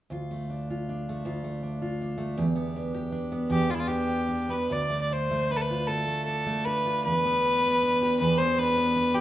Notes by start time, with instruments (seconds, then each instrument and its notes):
0.10 steel-string acoustic guitar D2 F4
0.31 steel-string acoustic guitar A3
0.50 steel-string acoustic guitar D4
0.70 steel-string acoustic guitar F4
0.89 steel-string acoustic guitar D4
1.09 steel-string acoustic guitar A3
1.25 steel-string acoustic guitar D2 F4
1.44 steel-string acoustic guitar A3
1.63 steel-string acoustic guitar D4
1.82 steel-string acoustic guitar F4
2.01 steel-string acoustic guitar D4
2.18 steel-string acoustic guitar A3
2.38 steel-string acoustic guitar E2 G4
2.56 steel-string acoustic guitar B3
2.76 steel-string acoustic guitar D4
2.94 steel-string acoustic guitar G4
3.12 steel-string acoustic guitar D4
3.32 steel-string acoustic guitar B3
3.50 steel-string acoustic guitar E2 G4, fiddle G4
3.70 steel-string acoustic guitar B3, fiddle F4
3.74 fiddle E4
3.79 fiddle F4
3.88 steel-string acoustic guitar D4, fiddle G4
4.09 steel-string acoustic guitar G4
4.29 steel-string acoustic guitar D4
4.49 steel-string acoustic guitar B3, fiddle B4
4.70 steel-string acoustic guitar D2, fiddle D5
4.90 steel-string acoustic guitar A3
5.01 fiddle D5
5.11 steel-string acoustic guitar D4, fiddle C5
5.31 steel-string acoustic guitar A3
5.50 steel-string acoustic guitar D4, fiddle B4
5.57 fiddle A4
5.62 fiddle B4
5.71 steel-string acoustic guitar F4
5.87 steel-string acoustic guitar D2, fiddle A4
6.07 steel-string acoustic guitar A3
6.25 steel-string acoustic guitar D4, fiddle A4
6.46 steel-string acoustic guitar A3
6.65 steel-string acoustic guitar D4, fiddle B4
6.85 steel-string acoustic guitar F4
7.04 steel-string acoustic guitar E2, fiddle B4
7.25 steel-string acoustic guitar B3
7.45 steel-string acoustic guitar D4
7.64 steel-string acoustic guitar B3
7.83 steel-string acoustic guitar D4
8.02 steel-string acoustic guitar G4
8.20 steel-string acoustic guitar E2, fiddle B4
8.38 steel-string acoustic guitar B3, fiddle C5
8.58 steel-string acoustic guitar D4, fiddle B4
8.77 steel-string acoustic guitar B3
8.96 steel-string acoustic guitar D4
9.14 steel-string acoustic guitar G4, fiddle G4